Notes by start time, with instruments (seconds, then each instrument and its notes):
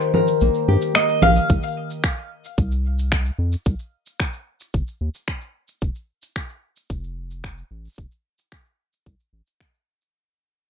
Already playing: nylon-string guitar D#3 A#3 G4 A#4, mandolin C5
0.01 cabasa
0.14 nylon-string guitar A#4, low conga
0.27 cabasa
0.41 analog synth bass A#1, nylon-string guitar A#3, cabasa
0.54 cabasa
0.68 analog synth bass G2, nylon-string guitar G4
0.81 cabasa
0.95 nylon-string guitar A#3, mandolin D#5, finger snap, cabasa
1.09 cabasa
1.22 analog synth bass A#1, nylon-string guitar G4, mandolin F5, low conga
1.36 cabasa
1.49 analog synth bass C2, kick, cabasa
1.63 cabasa
1.67 cabasa
1.72 cabasa
1.90 cabasa
2.04 finger snap, kick, cabasa
2.45 cabasa
2.58 analog synth bass C2, kick, cabasa
2.71 cabasa
2.99 cabasa
3.12 finger snap, kick, cabasa
3.26 cabasa
3.39 analog synth bass F2
3.52 cabasa
3.66 analog synth bass C2, kick, cabasa
3.79 cabasa
4.06 cabasa
4.20 finger snap, kick, cabasa
4.33 cabasa
4.60 cabasa
4.74 analog synth bass G1, kick, cabasa
4.88 cabasa
5.01 analog synth bass D#2
5.15 cabasa
5.28 finger snap, kick, cabasa
5.41 cabasa
5.68 cabasa
5.82 analog synth bass F1, kick, cabasa
5.95 cabasa
6.22 cabasa
6.36 finger snap, kick, cabasa
6.50 cabasa
6.76 cabasa
6.90 analog synth bass F1, kick, cabasa
7.04 cabasa
7.31 cabasa
7.44 finger snap, kick, cabasa
7.58 cabasa
7.71 analog synth bass A1
7.85 cabasa
7.87 cabasa
7.89 cabasa
7.91 cabasa
7.94 cabasa
7.95 cabasa
7.98 analog synth bass F1, kick, cabasa
8.11 cabasa
8.38 cabasa
8.52 finger snap, kick, cabasa
8.66 cabasa
8.93 cabasa
9.06 analog synth bass C2, kick, cabasa
9.20 cabasa
9.33 analog synth bass A1
9.47 cabasa
9.60 finger snap, kick, cabasa
9.74 cabasa
10.01 cabasa